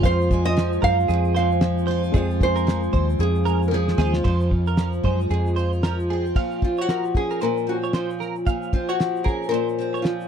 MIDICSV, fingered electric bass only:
0, 0, Header, 1, 2, 480
1, 0, Start_track
1, 0, Key_signature, -5, "minor"
1, 0, Tempo, 526778
1, 35, Time_signature, 4, 2, 24, 8
1, 9366, End_track
2, 0, Start_track
2, 0, Title_t, "Fingered electric bass"
2, 0, Program_c, 0, 33
2, 37, Note_on_c, 0, 41, 91
2, 719, Note_off_c, 0, 41, 0
2, 754, Note_on_c, 0, 42, 88
2, 974, Note_off_c, 0, 42, 0
2, 994, Note_on_c, 0, 41, 105
2, 1916, Note_off_c, 0, 41, 0
2, 1954, Note_on_c, 0, 41, 98
2, 2636, Note_off_c, 0, 41, 0
2, 2670, Note_on_c, 0, 39, 75
2, 2891, Note_off_c, 0, 39, 0
2, 2908, Note_on_c, 0, 41, 98
2, 3593, Note_off_c, 0, 41, 0
2, 3628, Note_on_c, 0, 39, 92
2, 3849, Note_off_c, 0, 39, 0
2, 3869, Note_on_c, 0, 41, 80
2, 4554, Note_off_c, 0, 41, 0
2, 4593, Note_on_c, 0, 42, 73
2, 4812, Note_off_c, 0, 42, 0
2, 4833, Note_on_c, 0, 41, 87
2, 5756, Note_off_c, 0, 41, 0
2, 9366, End_track
0, 0, End_of_file